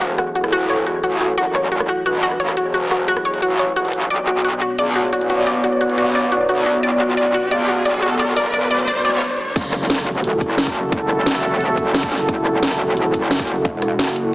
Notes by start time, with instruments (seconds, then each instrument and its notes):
Already playing: wobble bass E1, analog synth pad E4 F#4 A4
0.01 synth arpeggio sound F#4, closed hi-hat
0.18 synth arpeggio sound F#4, cross-stick, closed hi-hat
0.35 synth arpeggio sound F#4, closed hi-hat
0.44 cross-stick, closed hi-hat
0.52 synth arpeggio sound F#4, closed hi-hat
0.61 closed hi-hat
0.69 synth arpeggio sound C#5, closed hi-hat
0.86 synth arpeggio sound F#4, closed hi-hat
1.03 wobble bass A1, synth arpeggio sound F#4, closed hi-hat
1.12 closed hi-hat
1.21 synth arpeggio sound F#4, closed hi-hat
1.38 wobble bass F#1, synth arpeggio sound F#4, closed hi-hat
1.55 synth arpeggio sound C#5, cross-stick, closed hi-hat
1.72 synth arpeggio sound F#4, closed hi-hat
1.80 cross-stick, closed hi-hat
1.89 synth arpeggio sound F#4, closed hi-hat
2.06 wobble bass G1, synth arpeggio sound F#4, closed hi-hat
2.23 synth arpeggio sound F#4, closed hi-hat
2.31 cross-stick
2.40 wobble bass A1, synth arpeggio sound C#5, closed hi-hat
2.48 cross-stick, closed hi-hat
2.57 wobble bass E1, synth arpeggio sound F#4, closed hi-hat
2.74 synth arpeggio sound F#4, closed hi-hat
2.91 synth arpeggio sound F#4, cross-stick, closed hi-hat
3.08 synth arpeggio sound F#4, closed hi-hat
3.17 cross-stick, closed hi-hat
3.25 synth arpeggio sound C#5, closed hi-hat
3.34 closed hi-hat
3.42 wobble bass A1, synth arpeggio sound F#4, closed hi-hat
3.59 synth arpeggio sound C#5, closed hi-hat
3.76 synth arpeggio sound F#4, closed hi-hat
3.85 closed hi-hat
3.93 wobble bass A1, closed hi-hat
4.10 wobble bass B1, analog synth pad B3 C#5 D5, synth arpeggio sound D5, closed hi-hat, riser
4.27 synth arpeggio sound F#4, closed hi-hat
4.44 synth arpeggio sound F#4, closed hi-hat
4.53 closed hi-hat
4.61 synth arpeggio sound F#4, closed hi-hat
4.78 wobble bass C#2, synth arpeggio sound D5, closed hi-hat
4.96 synth arpeggio sound F#4, closed hi-hat
5.13 wobble bass A1, synth arpeggio sound F#4, closed hi-hat
5.21 closed hi-hat
5.30 synth arpeggio sound F#4, closed hi-hat
5.47 synth arpeggio sound D5, closed hi-hat
5.64 synth arpeggio sound F#4, closed hi-hat
5.81 synth arpeggio sound F#4, closed hi-hat
5.89 closed hi-hat
5.98 synth arpeggio sound F#4, closed hi-hat
6.06 closed hi-hat
6.15 synth arpeggio sound D5, closed hi-hat
6.32 synth arpeggio sound F#4, closed hi-hat
6.49 wobble bass D2, synth arpeggio sound F#4, closed hi-hat
6.58 closed hi-hat
6.66 synth arpeggio sound F#4, closed hi-hat
6.83 wobble bass B1, synth arpeggio sound D5, closed hi-hat
7.00 synth arpeggio sound F#4, closed hi-hat
7.17 synth arpeggio sound D5, closed hi-hat
7.26 closed hi-hat
7.34 synth arpeggio sound F#4, closed hi-hat
7.51 wobble bass C#2, synth arpeggio sound D5, closed hi-hat
7.68 synth arpeggio sound F#4, closed hi-hat
7.85 wobble bass B1, synth arpeggio sound D5, closed hi-hat
7.94 closed hi-hat
8.02 wobble bass B1, synth arpeggio sound F#4, closed hi-hat
8.19 synth arpeggio sound D5, closed hi-hat
8.28 closed hi-hat
8.36 wobble bass F#1, synth arpeggio sound D5, closed hi-hat
8.54 synth arpeggio sound D5, closed hi-hat
8.62 closed hi-hat
8.71 synth arpeggio sound D5, closed hi-hat
8.79 closed hi-hat
8.88 synth arpeggio sound D5, closed hi-hat
9.05 wobble bass B1, synth arpeggio sound D5, closed hi-hat
9.56 wobble bass F#1, analog synth pad E4 F#4 A4, kick, closed hi-hat, crash
9.73 cross-stick, closed hi-hat
9.90 snare, closed hi-hat
9.98 cross-stick
10.07 closed hi-hat
10.24 closed hi-hat
10.41 wobble bass F#1, kick, closed hi-hat
10.50 cross-stick
10.58 snare, closed hi-hat
10.67 kick, cross-stick
10.75 closed hi-hat
10.92 wobble bass F#1, kick, closed hi-hat
11.09 cross-stick, closed hi-hat
11.26 snare, closed hi-hat
11.35 cross-stick
11.43 closed hi-hat
11.51 wobble bass F1
11.60 closed hi-hat
11.77 wobble bass F#1, kick, closed hi-hat
11.95 snare, closed hi-hat
12.03 kick
12.12 snare, closed hi-hat
12.29 wobble bass F#1, kick, closed hi-hat
12.46 cross-stick, closed hi-hat
12.63 snare, closed hi-hat
12.71 cross-stick
12.80 closed hi-hat
12.88 wobble bass F1
12.97 closed hi-hat
13.14 wobble bass F#1, kick, closed hi-hat
13.22 cross-stick
13.31 snare, closed hi-hat
13.39 kick, cross-stick
13.48 closed hi-hat
13.65 wobble bass E1, kick, closed hi-hat
13.82 cross-stick, closed hi-hat
13.99 wobble bass F#1, snare, closed hi-hat
14.08 cross-stick
14.16 closed hi-hat